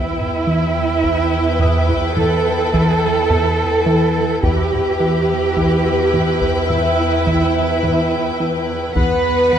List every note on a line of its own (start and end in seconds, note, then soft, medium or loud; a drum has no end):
0.00 0.25 E2 medium
0.00 4.39 E2 medium
0.00 2.13 E4 medium
0.00 4.39 E4 medium
0.00 4.39 B4 medium
0.00 4.40 G5 medium
0.19 taiko low-mid soft
0.47 0.81 E3 medium
1.04 1.38 E3 medium
1.04 taiko medium
1.60 1.94 E2 medium
1.60 4.96 D#6 soft
1.60 taiko low-mid soft
1.89 taiko medium
2.16 2.51 E2 medium
2.16 4.43 A4 medium
2.16 taiko low-mid medium
2.74 3.08 E3 medium
2.74 taiko medium
3.30 3.64 E2 medium
3.30 taiko low-mid soft
3.86 4.20 E3 medium
4.43 4.77 E2 medium
4.43 8.92 E2 medium
4.43 8.92 E4 medium
4.43 6.70 G4 medium
4.43 8.92 B4 medium
4.43 8.92 G5 medium
4.43 taiko medium
4.72 taiko low-mid soft
5.00 5.34 E3 medium
5.57 5.91 E3 medium
5.57 taiko medium
6.13 6.47 E2 medium
6.13 taiko low-mid soft
6.41 taiko medium
6.69 7.04 E2 medium
6.69 8.36 E4 medium
6.69 9.59 E5 soft
6.69 9.59 E6 soft
6.69 taiko low-mid soft
7.27 7.60 E3 medium
7.27 taiko medium
7.83 8.17 E2 medium
7.83 taiko low-mid soft
8.40 8.74 E3 medium
8.96 9.59 E2 medium
8.96 9.30 E2 medium
8.96 9.59 B3 medium
8.96 9.59 B4 medium
8.96 9.59 F#5 medium
8.96 taiko medium
9.52 9.59 E3 medium